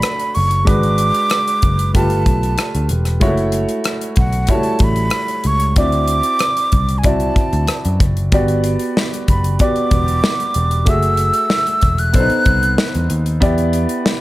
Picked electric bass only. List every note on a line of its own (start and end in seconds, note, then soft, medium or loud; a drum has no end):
0.37 0.65 F#1 medium
0.68 1.10 G#1 medium
1.63 1.92 F#1 medium
1.95 2.24 G1 medium
2.27 2.55 B1 medium
2.75 2.89 D2 medium
2.91 3.22 E1 medium
3.22 3.65 F#1 medium
4.18 4.46 B1 medium
4.81 5.10 A1 medium
5.45 5.74 C#2 medium
5.77 6.20 D2 medium
6.73 7.30 C2 medium
7.37 muted picked electric bass stroke soft
7.53 7.67 D2 medium
7.86 7.99 F#2 medium
8.01 8.29 F#1 medium
8.33 8.75 G1 medium
9.29 9.57 F#1 medium
9.92 10.20 E1 medium
10.56 10.84 E1 medium
10.87 11.30 F#1 medium
11.83 12.12 E1 medium
12.15 12.29 B1 loud
12.31 muted picked electric bass stroke soft
12.46 12.75 C2 medium
12.95 13.09 E2 medium
13.11 13.39 D#2 medium
13.42 13.85 E2 loud